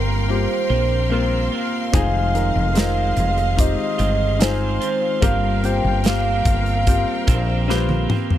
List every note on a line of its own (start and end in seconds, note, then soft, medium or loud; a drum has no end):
0.00 0.46 G1 medium
0.00 1.96 G2 medium
0.00 0.70 G3 medium
0.00 0.28 A#3 medium
0.00 0.70 A#3 medium
0.00 0.29 C4 medium
0.00 0.71 C4 medium
0.00 0.29 F4 medium
0.00 0.69 F4 medium
0.00 0.30 G4 medium
0.00 0.25 A#4 medium
0.00 0.26 A#4 medium
0.00 1.90 A#4 medium
0.00 8.38 F5 medium
0.00 1.90 G5 medium
0.00 8.38 C6 medium
0.28 1.07 A#3 medium
0.28 1.07 C4 medium
0.28 1.07 F4 medium
0.28 1.08 G4 medium
0.28 1.49 C5 medium
0.69 1.48 A#1 medium
0.69 1.10 A#3 soft
0.69 1.11 C4 soft
0.69 1.11 F4 soft
1.10 1.52 G3 medium
1.10 1.89 A#3 medium
1.10 1.52 A#3 medium
1.10 1.89 C4 medium
1.10 1.52 C4 medium
1.10 1.89 F4 medium
1.10 1.51 F4 medium
1.10 1.90 A#4 medium
1.52 1.94 A#3 soft
1.52 1.94 C4 soft
1.52 1.93 F4 soft
1.52 3.62 F5 loud
1.92 2.51 F1 medium
1.92 2.75 F2 medium
1.92 2.76 C3 medium
1.92 2.74 D#3 medium
1.92 5.19 G#3 medium
1.92 2.75 G#3 medium
1.92 2.32 C4 medium
1.92 2.76 C4 medium
1.92 2.32 D#4 medium
1.92 2.33 F4 medium
1.92 2.77 F4 medium
1.92 2.33 G#4 loud
1.92 5.19 D#5 medium
1.92 kick loud
1.92 closed hi-hat medium
2.33 2.73 C4 medium
2.33 2.73 D#4 medium
2.33 2.74 F4 medium
2.33 2.74 A#4 medium
2.33 closed hi-hat medium
2.56 3.13 F1 medium
2.75 3.99 D#3 medium
2.75 3.99 G#3 medium
2.75 3.53 C4 medium
2.75 3.99 C4 medium
2.75 3.54 D#4 medium
2.75 3.54 F4 medium
2.75 3.98 F4 medium
2.75 3.54 A#4 medium
2.75 snare medium
2.75 closed hi-hat medium
3.17 3.74 F1 medium
3.17 closed hi-hat medium
3.38 closed hi-hat soft
3.57 4.35 C4 medium
3.57 4.36 D#4 medium
3.57 4.36 F4 medium
3.57 4.36 G4 medium
3.57 4.44 D#5 loud
3.57 kick medium
3.57 closed hi-hat medium
3.98 4.77 G1 medium
3.98 4.38 D#3 soft
3.98 4.40 G#3 soft
3.98 4.41 C4 medium
3.98 4.40 F4 medium
3.98 closed hi-hat medium
4.39 4.81 D#3 medium
4.39 4.82 G#3 medium
4.39 5.17 C4 medium
4.39 4.81 C4 medium
4.39 5.18 D#4 medium
4.39 5.18 F4 medium
4.39 5.18 G#4 medium
4.39 5.23 C5 loud
4.39 snare loud
4.39 closed hi-hat medium
4.43 4.79 F4 medium
4.81 5.21 D#3 soft
4.81 5.22 G#3 soft
4.81 5.22 C4 medium
4.81 5.22 F4 medium
4.81 closed hi-hat medium
5.21 5.80 G1 loud
5.21 6.41 G2 medium
5.21 6.03 G3 medium
5.21 6.04 A#3 medium
5.21 5.61 C4 medium
5.21 6.05 C4 medium
5.21 5.61 F4 medium
5.21 6.06 F4 medium
5.21 5.61 G4 medium
5.21 5.61 A#4 medium
5.21 8.38 A#4 medium
5.21 5.66 F5 loud
5.21 8.38 G5 medium
5.21 kick medium
5.21 closed hi-hat medium
5.63 6.02 C4 medium
5.63 6.03 F4 medium
5.63 6.03 G4 medium
5.63 6.03 C5 medium
5.63 6.05 G5 loud
5.63 closed hi-hat medium
5.84 6.42 G1 medium
6.04 7.27 G3 medium
6.04 7.28 A#3 medium
6.04 6.82 C4 medium
6.04 7.28 C4 medium
6.04 6.83 F4 medium
6.04 7.27 F4 medium
6.04 6.83 G4 medium
6.04 6.83 C5 medium
6.04 8.07 F5 loud
6.04 snare medium
6.04 closed hi-hat medium
6.45 7.03 G1 medium
6.45 kick medium
6.45 closed hi-hat medium
6.66 closed hi-hat soft
6.87 7.65 C4 medium
6.87 7.65 F4 medium
6.87 7.65 G4 medium
6.87 7.66 C5 medium
6.87 kick medium
6.87 closed hi-hat medium
7.27 8.06 A#1 medium
7.27 7.68 A#3 soft
7.27 7.69 C4 medium
7.27 7.68 F4 medium
7.27 kick medium
7.27 closed hi-hat medium
7.68 8.10 G3 medium
7.68 8.10 A#3 medium
7.68 8.38 C4 medium
7.68 8.09 C4 medium
7.68 8.38 F4 medium
7.68 8.08 F4 medium
7.68 8.38 G4 medium
7.68 7.76 B4 medium
7.68 snare medium
7.77 8.38 C5 medium
7.89 high tom medium
8.09 8.38 A#3 soft
8.09 8.38 C4 medium
8.09 8.38 F4 medium
8.09 mid tom medium
8.30 floor tom medium